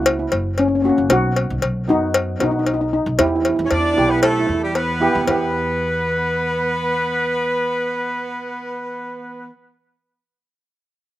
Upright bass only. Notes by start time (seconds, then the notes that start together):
Already playing: C#2
0.32 F#1
0.98 F#1
1.10 B1
1.50 B1
1.63 B1
1.89 F#2
2.41 B1
3.06 B1
3.19 E2
3.59 E2
3.71 E2
3.98 B1
4.49 E2
5.15 E2
5.27 E2